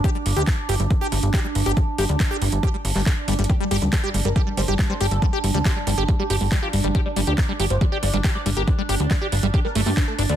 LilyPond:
<<
  \new Staff \with { instrumentName = "Analog synth lead" } { \time 4/4 \key c \dorian \tempo 4 = 139 r1 | r1 | g'16 g16 g16 g16 a'16 g16 g16 bes'16 g16 g16 c''16 g16 g16 c''16 g16 a'16 | g16 r16 g16 g16 c''16 g16 g16 r16 g16 g'16 g16 g16 g16 f'16 g16 g16 |
a'16 d'16 d'16 d'16 bes'16 d'16 d'16 c''16 d'16 d'16 d''16 d'16 d'16 d''16 d'16 bes'16 | d'16 r16 d'16 d'16 d''16 d'16 d'16 r16 d'16 bes'16 d'16 d'16 d'16 a'16 d'16 d'16 | }
  \new Staff \with { instrumentName = "Synth drone" } { \time 4/4 \key c \dorian d'1~ | d'1 | d'1~ | d'1~ |
d'1~ | d'1 | }
  \new Staff \with { instrumentName = "Acid bass" } { \clef bass \time 4/4 \key c \dorian g'16 g16 r16 g'16 g16 r16 g'16 g16 r16 g'16 g16 r16 g'16 g16 r16 g'16 | g16 r16 g'16 g16 r16 g'16 g16 r16 g'16 g16 r16 g16 a16 r16 g16 g16 | g16 g16 g'16 g16 g16 g'16 g16 g16 g'16 g16 g16 g'16 g16 g16 g'16 g16 | g16 g'16 g16 g16 g'16 g16 g16 g'16 g16 g16 g'16 g16 g16 g'16 g16 g16 |
g'16 g16 g16 g'16 g16 g16 g'16 g16 g16 g'16 g16 g16 g'16 g16 g16 g'16 | g16 g16 g'16 g16 g16 g'16 g16 g16 g'16 g16 a16 a16 d'16 r16 d'16 a16 | }
  \new Staff \with { instrumentName = "Analog synth bass" } { \clef bass \time 4/4 \key c \dorian r8 g,,16 d,16 r8 g,,16 g,,16 r8 g,,16 g,,16 r8 g,,16 g,,16 | r8 g,,16 d,16 r8 g,,16 g,,16 r8 g,,16 g,,16 r8 g,,16 g,,16 | r8 g,,16 d,16 r8 g,,16 g,,16 r8 g,,16 g,,16 r8 g,,16 g,,16 | r8 g,,16 d,16 r8 g,,16 g,,16 r8 g,,16 g,,16 r8 g,,16 g,,16 |
r8 g,,16 d,16 r8 g,,16 g,,16 r8 g,,16 g,,16 r8 g,,16 g,,16 | r8 g,,16 d,16 r8 g,,16 g,,16 r8 g,,16 g,16 r8 g,,16 d,16 | }
  \new DrumStaff \with { instrumentName = "Drums" } \drummode { \time 4/4 <hh bd>8 hho16 hh16 <hc hh bd>8 hho16 hh16 <hh bd>8 hho16 hh16 <hc hh bd>8 hho16 hh16 | <hh bd>8 hho16 hh16 <hc hh bd>8 hho16 hh16 <hh bd>8 hho16 <hc hho>16 <hc hh bd>8 <hh hho>32 hh32 hh32 hh32 | <hh bd>8 hho16 hh16 <hc hh bd>8 hho16 hh16 <hh bd>8 hho16 hh16 <hc hh bd>8 hho16 hh16 | <hh bd>8 hho16 hh16 <hc hh bd>8 hho16 hh16 <hh bd>8 hho16 hho16 <hc hh bd>8 hho16 hh16 |
<hh bd>8 hho16 hh16 <hc hh bd>8 hho16 hh16 <hh bd>8 hho16 hh16 <hc hh bd>8 hho16 hh16 | <hh bd>8 hho16 hh16 <hc hh bd>8 hho16 hh16 <hh bd>8 hho16 hho16 <hc hh bd>8 hho16 hh16 | }
>>